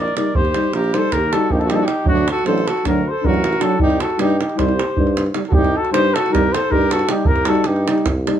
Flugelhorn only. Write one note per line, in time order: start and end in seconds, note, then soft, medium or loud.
0.00 0.16 D5 medium
0.17 0.37 D5 medium
0.35 0.74 C5 loud
0.75 0.95 A#4 medium
0.94 1.14 C5 medium
1.13 1.34 A#4 medium
1.33 1.53 A4 medium
1.51 1.61 G4 medium
1.60 1.70 A4 medium
1.69 1.77 G4 medium
1.75 1.86 A4 medium
1.85 2.08 G4 medium
2.08 2.27 F#4 medium
2.31 2.46 A4 medium
2.46 2.69 C5 medium
2.67 2.85 A4 medium
2.87 3.10 A#4 medium
3.08 3.26 C5 medium
3.24 3.64 A#4 medium
3.62 3.80 A4 medium
3.81 4.03 G4 medium
4.01 4.19 A4 medium
4.20 4.39 G4 medium
4.41 4.59 G4 medium
4.58 5.35 C5 medium
5.48 5.55 A4 medium
5.53 5.78 G4 loud
5.76 5.92 A4 medium
5.92 6.16 C5 loud
6.14 6.34 A4 medium
6.32 6.54 A#4 medium
6.53 6.72 C5 medium
6.71 6.94 A#4 medium
6.92 7.11 A4 medium
7.09 7.28 G4 medium
7.27 7.50 A#4 loud
7.48 7.68 A4 medium
7.66 8.11 G4 medium